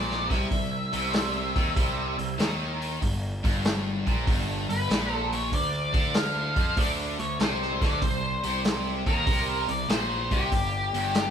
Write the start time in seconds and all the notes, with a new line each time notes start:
Already playing: A#1 A#2 D5
0.10 snare
0.30 C2 C3 E5, kick, snare, open hi-hat
0.49 C2 C3, kick, open hi-hat
0.92 C2 C3, open hi-hat
1.13 snare, open hi-hat
1.56 D#2 D#3, kick, open hi-hat
1.76 C2 C3, kick, open hi-hat
2.18 C2 C3, open hi-hat
2.38 D#2 D#3, snare, open hi-hat
2.82 open hi-hat
3.01 G1 G2, kick, open hi-hat
3.43 G1 G2, kick, open hi-hat
3.65 snare, open hi-hat
4.06 A#1 A#2, kick, open hi-hat
4.26 G1 G2, kick, open hi-hat
4.68 G1 G2 B4, open hi-hat
4.88 A#1 A#2, snare, open hi-hat
5.14 A4
5.32 C#5, open hi-hat
5.51 D2 D3 D5, kick, open hi-hat
5.92 D2 D3, kick, open hi-hat
6.14 F5, snare, open hi-hat
6.56 F2 F3, kick, open hi-hat
6.77 D2 D3 D5, kick, open hi-hat
7.19 D2 D3 C#5, open hi-hat
7.39 C2 C3 C5, snare, open hi-hat
7.62 snare
7.81 D2 D3 D5, kick, snare, open hi-hat
8.02 C2 C3 C5, kick, open hi-hat
8.43 C2 C3, open hi-hat
8.64 snare, open hi-hat
9.06 D#2 D#3 A#4, kick, open hi-hat
9.27 C2 C3, kick, open hi-hat
9.68 C2 C3 D5, open hi-hat
9.88 A#1 A#2 C5, snare, open hi-hat
10.31 C2 C3 G4, kick, open hi-hat
10.52 G1 G2, kick, open hi-hat
10.93 G1 G2, open hi-hat
11.14 snare, open hi-hat